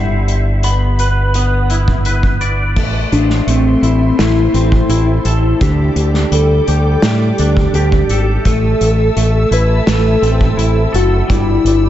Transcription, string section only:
2.75 11.24 A4 medium
2.75 5.57 C5 soft
2.75 5.57 E5 medium
2.75 5.58 C6 medium
5.59 8.41 D5 medium
5.59 8.41 G5 soft
5.59 8.41 D6 medium
8.45 11.27 E5 medium
8.45 11.27 A5 medium
8.45 11.27 E6 medium
11.31 11.89 G4 medium
11.31 11.89 D5 medium
11.31 11.89 B5 medium
11.31 11.89 E6 medium

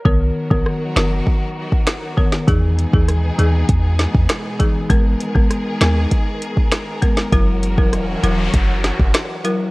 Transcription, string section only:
0.05 2.45 D#3 medium
0.05 2.45 F#3 medium
0.05 7.28 B3 medium
0.05 2.45 F#4 medium
0.05 2.45 A#4 medium
2.48 4.88 B2 medium
2.48 7.29 G#3 medium
2.48 4.88 D#4 medium
2.48 4.88 G#4 medium
4.90 7.30 D#3 medium
4.90 7.30 G#4 loud
4.90 9.71 A#4 medium
7.33 9.71 E3 medium
7.33 9.71 F#3 medium
7.33 9.71 C#4 medium
7.33 9.71 F#4 loud

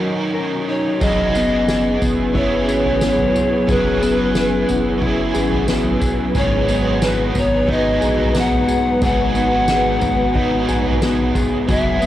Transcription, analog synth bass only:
1.02 1.98 F#1 loud
2.02 2.70 F#1 loud
2.68 3.32 G#1 medium
3.68 4.64 F#1 loud
4.69 5.32 F#1 loud
5.35 5.98 G#1 medium
6.35 7.31 G#1 loud
7.36 7.99 G#1 loud
8.02 8.65 A#1 medium
9.02 9.98 G#1 loud
10.02 10.65 G#1 loud
10.69 11.32 A#1 medium
11.69 12.06 F#1 loud

